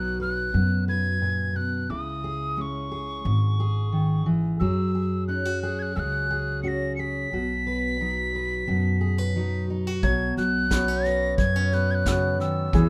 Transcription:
0.00 0.50 B1 medium
0.00 0.53 B2 medium
0.00 1.89 F#3 soft
0.00 1.85 D#4 soft
0.00 0.53 F#4 soft
0.00 0.19 B4 soft
0.00 0.18 F#6 medium
0.20 0.87 B4 medium
0.20 0.85 F#6 medium
0.54 1.85 F#2 medium
0.54 1.21 B2 soft
0.54 1.86 F#4 soft
0.88 1.86 B4 medium
0.88 1.58 G#6 medium
1.22 1.55 A#2 medium
1.55 1.89 B2 soft
1.55 1.91 F#6 medium
1.89 3.21 C#2 medium
1.89 3.25 C#3 medium
1.89 3.26 E4 soft
1.89 2.57 D#6 medium
2.24 2.91 G#4 medium
2.57 4.57 G#3 soft
2.57 4.57 C#4 soft
2.57 2.62 D#6 medium
2.61 4.27 C#6 medium
2.92 3.59 G#4 medium
3.25 4.57 G#1 medium
3.25 4.61 G#2 medium
3.60 4.60 G#4 medium
3.92 4.26 D#3 soft
4.26 4.60 E3 medium
4.60 5.93 F#2 medium
4.60 7.99 F#3 medium
4.60 4.94 G#4 medium
4.60 5.24 E6 medium
4.95 5.62 G#4 soft
5.28 6.62 C#4 soft
5.28 5.45 D#4 soft
5.28 5.60 F#6 medium
5.45 6.63 F#4 soft
5.62 5.95 G#4 medium
5.62 5.80 F#6 medium
5.79 5.97 F#6 medium
5.79 5.83 G#6 medium
5.96 7.28 C#2 medium
5.96 7.32 C#3 medium
5.96 6.29 G#4 medium
5.96 6.00 E6 medium
5.96 6.60 F#6 medium
6.31 6.98 G#4 medium
6.63 7.28 C#4 soft
6.63 7.33 F#4 soft
6.63 6.69 C#7 medium
6.68 6.95 A#6 medium
6.96 7.32 G#4 medium
6.96 7.01 C#7 medium
7.00 9.64 B6 medium
7.32 8.64 B1 medium
7.32 8.66 B2 medium
7.32 8.67 F#4 medium
7.67 8.34 B4 soft
8.00 9.35 F#3 soft
8.00 9.35 D#4 soft
8.35 9.00 B4 medium
8.68 9.99 F#2 medium
8.68 9.99 B2 soft
8.68 9.70 F#4 soft
9.01 9.18 G#4 medium
9.18 10.03 B4 soft
9.36 12.74 F#3 soft
9.36 9.69 D#4 soft
9.70 9.87 D#4 medium
9.87 10.03 F#4 soft
10.03 10.35 B1 medium
10.03 12.70 B2 medium
10.03 12.74 F#3 medium
10.03 10.71 F#4 medium
10.03 10.34 G#6 medium
10.03 kick medium
10.03 snare soft
10.37 11.34 B1 medium
10.37 12.70 F#4 soft
10.37 11.07 F#6 medium
10.37 snare soft
10.70 10.88 B3 soft
10.70 11.71 B3 medium
10.70 12.05 C#4 medium
10.70 12.06 F#4 medium
10.70 kick medium
10.70 snare medium
10.88 11.38 C#4 soft
11.05 11.72 B4 medium
11.05 11.37 A#6 medium
11.05 snare soft
11.38 12.69 F#2 medium
11.38 11.56 B3 soft
11.38 11.75 G#6 medium
11.38 kick medium
11.38 snare soft
11.56 12.74 C#4 soft
11.72 12.04 B3 medium
11.72 12.70 B4 medium
11.72 11.92 F#6 medium
11.72 snare soft
11.91 12.09 F#6 medium
11.91 11.96 G#6 medium
12.06 12.40 C#3 medium
12.06 12.80 B3 medium
12.06 12.80 C#4 medium
12.06 12.74 F#4 medium
12.06 12.13 E6 medium
12.06 kick medium
12.06 snare medium
12.12 12.40 F#6 medium
12.40 12.73 D#3 medium
12.40 12.89 E6 medium
12.40 snare soft
12.73 12.89 E2 medium
12.73 12.89 E3 medium
12.73 12.89 G#4 medium
12.73 kick medium
12.73 snare soft

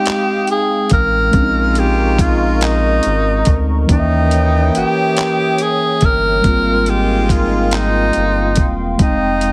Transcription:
0.00 1.28 G#3 medium
0.00 1.30 G#3 medium
0.00 0.86 C4 medium
0.00 1.29 C4 medium
0.00 0.86 D#4 medium
0.00 1.30 D#4 medium
0.00 0.49 G4 loud
0.00 1.31 F5 medium
0.00 0.86 G5 medium
0.00 1.30 G5 medium
0.00 1.31 G5 medium
0.00 1.30 D#6 medium
0.06 clap loud
0.06 closed hi-hat medium
0.47 0.89 G#4 loud
0.47 closed hi-hat soft
0.90 1.30 A1 medium
0.90 1.81 A#4 loud
0.90 kick medium
0.90 closed hi-hat medium
1.31 3.00 A#1 loud
1.31 3.83 G#3 medium
1.31 3.42 G#3 medium
1.31 3.84 C4 medium
1.31 3.42 D#4 medium
1.31 3.42 F4 medium
1.31 3.86 A#4 medium
1.31 3.86 D#5 medium
1.31 3.86 A#5 medium
1.31 3.86 C#6 medium
1.31 kick loud
1.31 closed hi-hat medium
1.35 3.86 C#4 medium
1.35 1.42 D4 medium
1.43 3.90 D#4 medium
1.75 2.22 G4 loud
1.75 closed hi-hat medium
2.19 2.65 F4 medium
2.19 kick loud
2.19 closed hi-hat medium
2.61 3.58 D#4 loud
2.61 clap loud
2.61 closed hi-hat medium
3.03 3.43 G#1 medium
3.03 closed hi-hat soft
3.45 3.85 D2 medium
3.45 kick medium
3.45 closed hi-hat medium
3.87 4.70 D#2 loud
3.87 6.39 E3 medium
3.87 5.97 E3 medium
3.87 6.40 A#3 medium
3.87 6.41 C#4 medium
3.87 5.97 A#4 medium
3.87 6.42 C#5 medium
3.87 6.41 E5 medium
3.87 5.97 G5 medium
3.87 9.52 G5 medium
3.87 6.41 D#6 medium
3.87 kick medium
3.87 closed hi-hat medium
3.92 4.71 D#4 medium
3.92 3.97 D#4 medium
3.99 6.45 E5 medium
4.31 closed hi-hat medium
4.75 4.84 G1 soft
4.75 5.64 G4 loud
4.75 closed hi-hat medium
5.17 clap loud
5.17 closed hi-hat medium
5.58 6.07 G#4 loud
5.58 closed hi-hat soft
6.01 6.41 G1 medium
6.01 kick medium
6.01 closed hi-hat medium
6.05 6.91 A#4 loud
6.42 8.11 G#1 loud
6.42 8.94 G3 medium
6.42 8.53 G#3 medium
6.42 8.95 A#3 medium
6.42 8.96 C4 medium
6.42 8.53 D#4 medium
6.42 8.53 F4 medium
6.42 8.97 A#4 medium
6.42 9.52 F5 medium
6.42 8.97 C6 medium
6.42 kick loud
6.42 closed hi-hat medium
6.48 8.97 F4 medium
6.86 7.34 G4 loud
6.86 closed hi-hat medium
7.29 7.77 F4 medium
7.29 kick loud
7.29 closed hi-hat medium
7.71 8.69 D#4 loud
7.71 clap loud
7.71 closed hi-hat medium
8.13 8.60 G1 medium
8.13 closed hi-hat soft
8.56 8.96 E1 medium
8.56 kick medium
8.56 closed hi-hat medium
8.98 9.52 F1 loud
8.98 9.52 G#3 medium
8.98 9.52 C4 medium
8.98 9.52 D#4 medium
8.98 9.52 G5 medium
8.98 9.52 D#6 medium
8.98 kick loud
8.98 closed hi-hat medium
9.02 9.52 D#4 medium
9.02 9.52 G5 medium
9.41 closed hi-hat medium

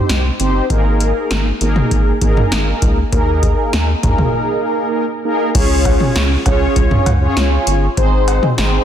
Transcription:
0.00 0.21 C4 medium
0.00 0.21 D#4 medium
0.00 0.21 G4 medium
0.00 0.21 C5 loud
0.09 0.31 C2 loud
0.09 snare loud
0.09 closed hi-hat medium
0.40 0.61 G1 medium
0.40 0.65 C4 medium
0.40 0.65 D#4 medium
0.40 0.65 G4 medium
0.40 0.65 C5 medium
0.40 closed hi-hat medium
0.70 1.13 G#1 loud
0.70 1.47 A#3 medium
0.70 1.47 D#4 medium
0.70 1.47 G#4 medium
0.70 1.47 A#4 loud
0.70 kick loud
0.70 closed hi-hat medium
1.00 closed hi-hat medium
1.31 1.52 G#1 medium
1.31 snare loud
1.31 closed hi-hat medium
1.61 1.82 G#1 loud
1.61 2.12 A#3 medium
1.61 2.12 D#4 medium
1.61 2.12 G#4 medium
1.61 2.12 A#4 medium
1.61 closed hi-hat medium
1.76 mid tom loud
1.91 2.13 G#1 loud
1.91 kick loud
1.91 closed hi-hat medium
2.22 2.43 G#1 loud
2.22 2.98 A#3 medium
2.22 2.98 D#4 medium
2.22 2.98 G#4 medium
2.22 2.98 A#4 loud
2.22 kick medium
2.22 closed hi-hat medium
2.37 mid tom medium
2.52 2.73 G#1 loud
2.52 snare loud
2.52 closed hi-hat medium
2.82 3.03 C#2 medium
2.82 kick loud
2.82 closed hi-hat medium
3.13 3.55 D#2 loud
3.13 3.89 A#3 medium
3.13 3.89 D#4 medium
3.13 3.89 G#4 medium
3.13 3.89 A#4 loud
3.13 kick loud
3.13 closed hi-hat medium
3.43 kick medium
3.43 closed hi-hat medium
3.73 3.94 D#2 medium
3.73 snare loud
3.73 closed hi-hat medium
4.03 4.25 D#2 loud
4.03 5.05 A#3 medium
4.03 5.05 D#4 medium
4.03 5.05 G#4 medium
4.03 5.05 A#4 loud
4.03 kick medium
4.03 closed hi-hat medium
4.03 mid tom medium
4.18 mid tom loud
5.25 5.50 A#3 medium
5.25 5.50 D#4 medium
5.25 5.50 G#4 medium
5.25 5.50 A#4 medium
5.55 5.97 C#2 loud
5.55 6.31 C#4 medium
5.55 6.31 F4 medium
5.55 6.31 G#4 medium
5.55 6.31 C#5 loud
5.55 kick loud
5.55 closed hi-hat medium
5.55 crash loud
5.85 kick medium
5.85 closed hi-hat medium
5.85 cowbell medium
6.00 mid tom medium
6.16 6.37 C#2 medium
6.16 snare loud
6.16 closed hi-hat medium
6.46 6.67 C#2 loud
6.46 7.10 C#4 medium
6.46 7.10 F4 medium
6.46 7.10 G#4 medium
6.46 7.10 C#5 loud
6.46 kick medium
6.46 closed hi-hat medium
6.46 cowbell medium
6.76 6.97 C#2 loud
6.76 kick loud
6.76 closed hi-hat medium
6.91 mid tom loud
7.06 7.28 C#2 loud
7.06 closed hi-hat medium
7.06 mid tom loud
7.06 cowbell medium
7.22 7.85 C#4 medium
7.22 7.85 F4 medium
7.22 7.85 G#4 medium
7.22 7.85 C#5 loud
7.37 7.58 C#2 loud
7.37 snare loud
7.37 closed hi-hat medium
7.67 7.88 G1 loud
7.67 closed hi-hat medium
7.97 8.40 G#1 loud
7.97 8.48 C4 medium
7.97 8.48 D#4 medium
7.97 8.48 G#4 medium
7.97 8.48 C5 loud
7.97 kick loud
7.97 closed hi-hat medium
8.28 closed hi-hat medium
8.28 cowbell medium
8.43 mid tom medium
8.58 8.79 G#1 loud
8.58 8.83 C4 medium
8.58 8.83 D#4 medium
8.58 8.83 G#4 medium
8.58 8.83 C5 loud
8.58 snare loud
8.58 closed hi-hat medium

